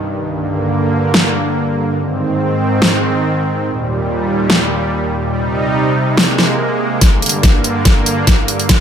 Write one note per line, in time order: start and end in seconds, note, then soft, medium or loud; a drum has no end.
0.00 0.28 C2 medium
0.00 1.94 G2 medium
0.00 0.28 D#3 medium
0.30 1.96 D3 medium
0.30 1.96 A#3 medium
1.14 snare loud
1.98 3.64 G#2 medium
1.98 3.64 D#3 medium
1.98 3.64 C4 medium
2.82 snare loud
3.66 5.32 D#2 medium
3.66 5.32 A#2 medium
3.66 5.32 G3 medium
4.50 snare loud
5.34 7.00 C3 medium
5.34 6.17 G3 medium
5.34 6.17 D#4 medium
6.17 7.01 G#3 medium
6.17 7.00 A#3 medium
6.17 snare loud
6.38 snare medium
7.01 8.68 G2 medium
7.01 8.68 D3 medium
7.01 8.68 A#3 medium
7.01 kick medium
7.01 snare soft
7.01 closed hi-hat medium
7.22 closed hi-hat soft
7.26 closed hi-hat medium
7.29 closed hi-hat medium
7.43 kick medium
7.43 snare soft
7.43 closed hi-hat medium
7.64 closed hi-hat soft
7.85 kick medium
7.85 snare soft
7.85 closed hi-hat medium
8.06 closed hi-hat medium
8.27 kick medium
8.27 snare soft
8.27 closed hi-hat medium
8.48 closed hi-hat medium
8.60 closed hi-hat soft
8.69 8.80 G#2 medium
8.69 8.80 D#3 medium
8.69 8.80 C4 medium
8.69 kick medium
8.69 snare soft
8.69 closed hi-hat medium